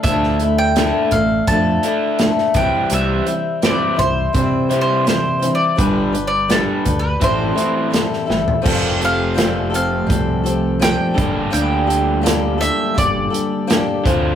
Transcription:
<<
  \new Staff \with { instrumentName = "Mandolin" } { \time 4/4 \key g \dorian \tempo 4 = 84 e''8. g''8. f''8 a''4. g''8 | e''4 d''8 c''8~ \tuplet 3/2 { c''4 c''8 c''4 d''8~ } | \tuplet 3/2 { d''4 d''8 a'4 b'8 } c''4. r8 | r8 f''4 f''4. g''4 |
g''4 r8 e''8 d''4. r8 | }
  \new Staff \with { instrumentName = "Steel-string acoustic guitar" } { \time 4/4 \key g \dorian <d f a d' e' a'>8 <a d' e' a'>8 <a d' e' a'>8 <a d' a'>8 <d f a d' e' a'>8 <a d' e' a'>8 <a d' e' a'>8 <g c' e' c''>8 | <c e g c' e' c''>8 <g c' e' c''>8 <g c' e' c''>8 <g c' e' c''>8 <c e g c' e' c''>8 <g c' e' c''>8 <g c' e' c''>8 <g c' e' c''>8 | <g d' g' b'>8 <d' g' b'>8 <g d' g' b'>8 <d' g' b'>8 <a, e g c' e' a'>8 <g c' e' a'>8 <g c' e' a'>8 <g c' e' a'>8 | <f g c' g' a'>8 <c' g' a'>8 <f g c' g' a'>8 <c' g' a'>8 <g c' g' a'>8 <c' g' a'>8 <f g c' g' a'>8 <d' g' a'>8 |
<g bes d' g' a'>8 <d' g' a'>8 <g bes d' g' a'>8 <d' g' a'>8 <bes d' g' a'>8 <d' g' a'>8 <g bes d' g' a'>8 <c' f' c''>8 | }
  \new Staff \with { instrumentName = "Overdriven electric guitar" } { \clef bass \time 4/4 \key g \dorian <d a d'>8 <d a>8 <d a d'>8 <d a>8 <d a>8 <d a d'>8 <d a>8 <c e g>8 | <c e g>8 <c e>8 <c e g>8 <c e>8 <c e>8 <c e g>8 <c e>8 <c e>8 | <g, d g>8 <g, d>8 <g, d g>8 <g, d>8 <a, e c'>8 <a, e c'>8 <a, e>8 <a, e>8 | <f, c f a c' f'>2.~ <f, c f a c' f'>8 <g, d g bes d' g'>8~ |
<g, d g bes d' g'>2.~ <g, d g bes d' g'>8 <d a d' f'>8 | }
  \new Staff \with { instrumentName = "Picked electric bass" } { \clef bass \time 4/4 \key g \dorian d,4. a,,8 f,8 r4 c,16 r16 | c,8 r4 c,8 c2 | g,,4. d,8 a,,8 r4 g,,16 r16 | f,,2 c,4. g,,8 |
d,2 g,,8 r4 d,8 | }
  \new DrumStaff \with { instrumentName = "Drums" } \drummode { \time 4/4 <hh bd>16 sn16 hh8 <hh sn>8 <hh bd>8 <hh bd>8 hh8 <hh sn>16 sn16 <hh bd>8 | hh8 hh8 <hh sn>8 <hh bd>8 <hh bd>8 hh8 <hh sn>8 hh8 | <hh bd>8 hh8 <hh sn>8 <hh bd>8 <hh bd>8 hh8 <hh sn>16 sn16 sn16 tomfh16 | <cymc bd>8 hh8 <hh sn>8 hh8 <hh bd>8 hh8 <hh sn>8 <hh bd>8 |
hh8 hh8 <hh sn>8 hh8 <hh bd>8 hh8 <hh sn>8 <hh bd>8 | }
>>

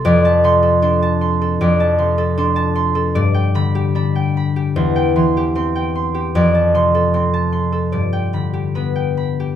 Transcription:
<<
  \new Staff \with { instrumentName = "Harp" } { \time 4/4 \key d \dorian \tempo 4 = 76 << { r8 c'''2.~ c'''8 | r8 b''4. r8 c'''4.~ | c'''8 c'''4. r8 b''4. | } \\ { <a' d'' a'' c'''>16 a''8 a'16 c'''16 a''16 c'''16 a'16 d''16 a''16 c'''16 a'16 c'''16 a''16 c'''16 a'16 | d''16 g''8 g'16 b''16 g''16 b''16 g'16 c''16 g''8 g'16 c'''16 g''16 c'''16 g'16 | d''16 a''8 a'16 c'''16 a''16 c'''16 a'16 d''16 g''8 g'16 b''16 g''16 b''16 g'16 | } >> }
  \new Staff \with { instrumentName = "Harp" } { \clef bass \time 4/4 \key d \dorian f,8 c8 d'4 f,8 c8 d'4 | g,8 d8 d'4 e,8 e8 c'4 | f,8 c8 c'4 g,8 d8 b4 | }
>>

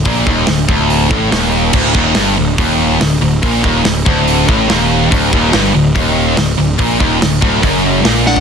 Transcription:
<<
  \new Staff \with { instrumentName = "Lead electric guitar" } { \time 4/4 \tempo 4 = 143 r1 | r1 | r1 | r1 |
r2. r8 fis''8 | }
  \new Staff \with { instrumentName = "Lead electric guitar" } { \time 4/4 r1 | r1 | r1 | r1 |
r2. r8 d'8 | }
  \new Staff \with { instrumentName = "Distorted electric guitar" } { \clef bass \time 4/4 bes,8 ees,8 d,8 d,4 a,8 ees,4 | d,8 ees,8 g,8 d,8 ees,4 d,8 d,8 | bes,8 ees,8 d,8 d,4 a,8 ees,4 | d,8 ees,8 g,8 d,8 ees,4 d,8 d,8 |
bes,8 ees,8 d,8 d,8 fis,4 bes,4 | }
  \new Staff \with { instrumentName = "Distorted electric guitar" } { \clef bass \time 4/4 bes,8 ees,8 d,8 d,4 a,8 ees,4 | d,8 ees,8 g,8 d,8 ees,4 d,8 d,8 | bes,8 ees,8 d,8 d,4 a,8 ees,4 | d,8 ees,8 g,8 d,8 ees,4 d,8 d,8 |
bes,8 ees,8 d,8 d,8 fis,4 bes,4 | }
  \new Staff \with { instrumentName = "Picked electric bass" } { \clef bass \time 4/4 bes,,8 ees,,8 d,,8 d,,4 a,,8 ees,,4 | d,,8 ees,,8 g,,8 d,,8 ees,,4 d,,8 d,,8 | bes,,8 ees,,8 d,,8 d,,4 a,,8 ees,,4 | d,,8 ees,,8 g,,8 d,,8 ees,,4 d,,8 d,,8 |
bes,,8 ees,,8 d,,8 d,,8 fis,,4 bes,,4 | }
  \new DrumStaff \with { instrumentName = "Drums" } \drummode { \time 4/4 <hho bd>8 bd8 <hho sn>8 bd8 hho8 bd8 <hho sn>4 | <cymc bd>8 bd8 <hho sn>4 <hho bd>4 <hho sn>4 | <hho bd>8 bd8 <hho sn>8 bd8 hho8 bd8 <hho sn>4 | <hho bd>8 bd8 <hho sn>4 <hho bd>4 <hho sn>4 |
<hho bd>8 bd8 <hho sn>8 bd8 <hho bd>4 <hho sn>8 sn16 tomfh16 | }
>>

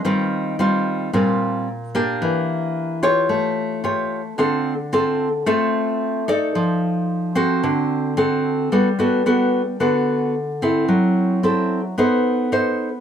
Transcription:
\new Staff \with { instrumentName = "Nylon-string guitar" } { \time 4/4 \key d \phrygian \tempo 4 = 111 << { <g c' f'>4 <g c' f'>4 <g c' f'>4 r8 <bes d' g'>8~ | <bes d' g'>4. <f' g' des''>4. <eis' g' cis''>8 r8 | <c' f' a'>8 r8 <c' f' a'>8 r8 <c' f' a'>4. <ees' a' d''>8~ | <ees' a' d''>4. <c' ges' a'>4. <c' fis' a'>4 |
\key g \major <b fis' a'>8 <b fis' a'>8 <b fis' a'>8 r8 <b fis' a'>4 r8 <c' e' a'>8~ | <c' e' a'>4 <c' e' a'>8 r8 <dis' a' c''>4 <dis' a' c''>8 r8 | } \\ { ees2 bes,2 | e2 a2 | d2 a2 | f2 d2 |
g2 d2 | fis2 b2 | } >> }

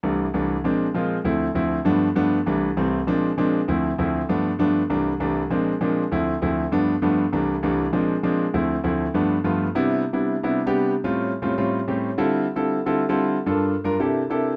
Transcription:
\new Staff \with { instrumentName = "Grand piano" } { \time 4/4 \key c \major \tempo 4 = 198 <c, e g a d'>8. r16 <c, e g a d'>8. r16 <bes, f aes c' d'>8. r16 <bes, f aes c' f'>8. r16 | <d, f a c' e'>8. r16 <d, f a c' e'>8. r16 <g, f a b d'>8. r16 <g, f a b d'>8. r16 | <c, e g a d'>8. r16 <c, e g a c'>8. r16 <bes, f aes c' d'>8. r16 <bes, f aes c' d'>8. r16 | <d, f a c' e'>8. r16 <d, f a c' e'>8. r16 <g, f a b d'>8. r16 <g, f a b d'>8. r16 |
<c, e g a d'>8. r16 <c, e g a d'>8. r16 <bes, f aes c' d'>8. r16 <bes, f aes c' d'>8. r16 | <d, f a c' e'>8. r16 <d, f a c' e'>8. r16 <g, f a b d'>8. r16 <g, f a b d'>8. r16 | <c, e g a d'>8. r16 <c, e g a d'>8. r16 <bes, f aes c' d'>8. r16 <bes, f aes c' d'>8. r16 | <d, f a c' e'>8. r16 <d, f a c' e'>8. r16 <g, f a b d'>8. r16 <g, f a b f'>8. r16 |
<c g b d' e'>4 r16 <c g b d' e'>8. r16 <c g b d' e'>8 r16 <c g b d' g'>4 | r16 <a, g bis cis' eis'>8. r8 <a, g bis cis' eis'>16 r16 <a, g bis cis' eis'>8. r16 <a, g bis cis' g'>8. r16 | <d g c' e' f' a'>4 r16 <d g c' e' f' a'>8. r16 <d g c' e' f' a'>8 r16 <d g c' e' f' a'>4 | r16 <g, bes d' f' a'>8. r8 <g, bes d' f' bes'>16 r16 <c bes d' e' g' a'>8. r16 <c bes d' e' g' a'>8. r16 | }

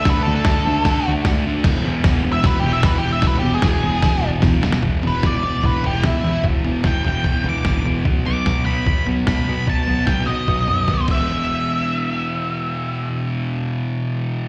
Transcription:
<<
  \new Staff \with { instrumentName = "Lead electric guitar" } { \time 4/4 \key b \mixolydian \tempo 4 = 149 \tuplet 3/2 { b'8 a'8 a'8~ } a'4. r4. | r4 \tuplet 3/2 { r4 e''8 b'8 g'8 e''8 b'8 g'8 e''8 } | \tuplet 3/2 { b'8 g'8 gis'8~ } gis'4. r4. | r8 b'8 d''4 b'8 g'8 e'4 |
r4 g''8 g''4 d'''4 r8 | r8 d'''4 b''4 r8 b''4 | a''4 g''8 dis''2 e''8~ | e''1~ |
e''1 | }
  \new Staff \with { instrumentName = "Distorted electric guitar" } { \clef bass \time 4/4 \key b \mixolydian <d a d'>8 <d a d'>8 <d a d'>8 <d a d'>8 <d a d'>8 <d a d'>8 <d a d'>8 <d a d'>8 | <e, b, e>8 <e, b, e>8 <e, b, e>8 <e, b, e>8 <e, b, e>8 <e, b, e>8 <e, b, e>8 <e, b, e>8 | <e, b, e>8 <e, b, e>8 <e, b, e>8 <e, b, e>8 <e, b, e>8 <e, b, e>8 <e, b, e>8 <e, b, e>8 | <e, b, e>8 <e, b, e>8 <e, b, e>8 <e, b, e>8 <e, b, e>8 <e, b, e>8 <e, b, e>8 <e, b, e>8 |
<e, b, e>8 <e, b, e>8 <e, b, e>8 <e, b, e>8 <e, b, e>8 <e, b, e>8 <e, b, e>8 <e, b, e>8 | <b, fis b>8 <b, fis b>8 <b, fis b>8 <b, fis b>8 <b, fis b>8 <b, fis b>8 <b, fis b>8 <b, fis b>8 | <b, fis b>8 <b, fis b>8 <b, fis b>8 <b, fis b>8 <b, fis b>8 <b, fis b>8 <b, fis b>8 <e, b, e>8~ | <e, b, e>1~ |
<e, b, e>1 | }
  \new Staff \with { instrumentName = "Picked electric bass" } { \clef bass \time 4/4 \key b \mixolydian d,8 d,8 d,8 d,8 d,8 d,8 d,4 | e,,8 e,,8 e,,8 e,,8 e,,8 e,,8 e,,4 | e,,8 e,,8 e,,8 e,,8 e,,8 e,,8 e,,4 | e,,8 e,,8 e,,4 a,,8 e,,8 e,8 e,8 |
e,,8 e,,8 e,,8 e,,8 e,,8 b,,8 gis,,8 e,,8 | b,,8 b,,8 b,,4 e,8 b,,8 b,8 b,8 | b,,8 b,,8 b,,8 b,,8 b,,8 fis,8 dis,8 e,,8~ | e,,1~ |
e,,1 | }
  \new DrumStaff \with { instrumentName = "Drums" } \drummode { \time 4/4 <hho bd sn>4 <hho bd sn>4 <hho bd sn>4 <hho bd sn>4 | <cymc bd sn>4 <hho bd sn>4 <hho bd sn>4 <hho bd sn>4 | <hho bd sn>4 <hho bd sn>4 <hho bd sn>4 <hho bd sn>8 sn16 sn16 | <bd tomfh>8 tomfh8 <bd sn tomfh>8 tomfh8 <bd tomfh>8 tomfh8 <bd sn tomfh>8 tomfh8 |
<bd tomfh>8 tomfh8 <bd sn tomfh>8 tomfh8 <bd tomfh>8 tomfh8 <bd sn tomfh>8 tomfh8 | <bd tomfh>8 tomfh8 <bd sn tomfh>8 tomfh8 <bd tomfh>8 tomfh8 <bd sn tomfh>8 tomfh8 | <bd tomfh>8 tomfh8 <bd sn tomfh>8 tomfh8 <bd tomfh>8 tomfh8 <bd sn>8 <cymc bd>8 | r4 r4 r4 r4 |
r4 r4 r4 r4 | }
>>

